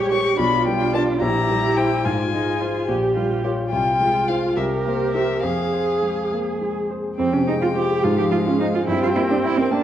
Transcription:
0.00 0.35 A#1 soft
0.00 0.41 G3 soft
0.00 0.41 G#3 soft
0.00 0.36 G4 medium
0.00 0.40 G4 medium
0.00 0.11 C#5 soft
0.11 0.39 C#5 soft
0.11 0.38 C#6 medium
0.38 1.19 B1 soft
0.38 1.22 D4 medium
0.38 1.23 F4 soft
0.38 0.66 B5 medium
0.67 1.11 G3 soft
0.67 0.94 G5 medium
0.94 1.19 F4 soft
0.94 1.19 D5 soft
0.94 1.02 A5 medium
1.21 2.02 A#1 soft
1.21 2.06 E4 soft
1.21 2.04 G4 medium
1.21 1.78 A#5 medium
1.49 1.94 G3 soft
1.77 2.02 E4 soft
1.77 2.02 C5 soft
1.77 2.06 G5 medium
2.04 2.86 G#2 soft
2.04 2.12 F4 medium
2.04 2.87 F4 soft
2.04 2.88 G#5 medium
2.32 2.77 G#3 soft
2.32 2.62 D#4 soft
2.61 2.90 F4 soft
2.61 2.86 F4 soft
2.61 2.86 C5 soft
2.88 3.70 A#1 soft
2.88 3.70 G4 soft
2.88 3.15 G4 medium
3.15 3.61 G3 soft
3.15 3.43 F4 soft
3.44 3.69 F4 soft
3.44 3.52 G4 soft
3.44 3.69 C#5 soft
3.71 4.55 C2 soft
3.71 4.58 F4 soft
3.71 4.29 G5 medium
4.01 4.46 G#3 soft
4.28 4.54 F4 soft
4.28 4.54 C5 soft
4.28 4.56 F5 medium
4.56 5.41 C2 soft
4.56 5.42 G4 soft
4.56 5.45 A#4 soft
4.56 4.64 E5 soft
4.86 5.32 A#3 soft
4.86 5.13 C5 soft
5.14 5.41 G4 soft
5.14 5.41 C5 soft
5.14 5.43 E5 medium
5.43 7.15 F2 soft
5.43 6.73 G#4 soft
5.43 6.99 G#4 soft
5.43 6.30 F5 soft
5.73 6.20 C5 soft
6.02 6.49 G#3 soft
6.32 6.61 A#3 soft
6.61 7.08 G#3 soft
6.91 7.19 C5 soft
7.18 8.01 F2 soft
7.18 7.35 C4 medium
7.18 8.05 G5 soft
7.33 7.56 C3 soft
7.33 7.47 C#4 medium
7.47 7.70 G#3 soft
7.47 7.53 D#4 medium
7.61 7.84 F4 soft
7.61 7.67 F4 medium
7.75 8.05 G4 medium
7.75 7.98 C5 soft
7.90 8.04 G#4 soft
8.03 8.86 G#2 soft
8.03 8.84 G#3 medium
8.03 8.17 F4 medium
8.03 8.88 F5 soft
8.18 8.40 F3 soft
8.18 8.24 G4 medium
8.31 8.54 G#3 soft
8.31 8.37 F4 medium
8.46 8.60 C#4 medium
8.46 8.69 F4 soft
8.60 8.66 D#4 medium
8.60 8.83 C5 soft
8.74 8.80 F4 medium
8.74 8.88 G#4 soft
8.88 9.83 G2 soft
8.88 9.73 C4 medium
8.88 9.02 E4 medium
8.88 9.73 G5 soft
9.01 9.24 G3 soft
9.01 9.08 F4 medium
9.16 9.38 A#3 soft
9.16 9.22 E4 medium
9.30 9.36 D4 medium
9.30 9.52 G4 soft
9.44 9.59 E4 medium
9.44 9.66 E5 soft
9.58 9.74 C4 medium
9.58 9.80 A#4 soft
9.71 9.83 A#3 medium
9.71 9.83 D4 medium
9.71 9.83 G5 soft
9.71 9.83 A5 soft

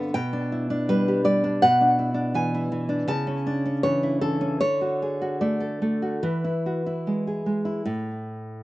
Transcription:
0.00 0.13 G2 medium
0.00 0.17 D3 medium
0.00 0.16 B3 medium
0.00 0.17 C4 soft
0.00 0.17 D4 soft
0.00 0.13 F5 medium
0.14 1.59 B2 medium
0.14 0.87 G5 loud
0.33 0.69 D4 medium
0.52 1.43 E4 soft
0.70 1.43 D4 medium
0.89 1.23 G3 medium
0.89 1.24 B4 medium
1.08 1.64 G4 medium
1.24 1.63 G3 medium
1.24 1.61 D5 medium
1.44 1.63 D4 medium
1.62 3.07 B2 medium
1.62 2.34 F#5 loud
1.81 2.13 D4 medium
1.99 2.35 E4 medium
2.14 2.88 D4 medium
2.34 2.71 E3 medium
2.34 3.08 G#5 medium
2.54 3.11 E4 medium
2.72 3.11 E3 medium
2.89 3.10 D4 medium
3.08 4.57 C#3 medium
3.08 3.82 A5 loud
3.27 3.64 C#4 medium
3.47 4.61 D4 medium
3.66 4.40 C#4 medium
3.83 4.21 E3 medium
3.83 4.21 C#5 loud
4.03 4.62 E4 medium
4.21 4.62 E3 medium
4.21 4.60 A4 medium
4.41 4.62 C#4 medium
4.61 6.19 D3 medium
4.61 5.37 C#5 loud
4.81 5.20 F#4 soft
5.02 5.60 G#4 soft
5.22 6.01 F#4 medium
5.41 5.81 A3 medium
5.41 6.20 D5 medium
5.60 6.22 A4 soft
5.82 6.24 A3 medium
6.02 6.24 F#4 soft
6.23 7.84 E3 medium
6.23 7.27 B4 medium
6.44 6.85 E4 soft
6.66 7.89 F#4 soft
6.86 7.64 E4 soft
7.07 7.45 G#3 soft
7.27 7.88 G#4 soft
7.46 7.85 G#3 soft
7.65 7.87 E4 soft
7.85 8.63 A2 medium

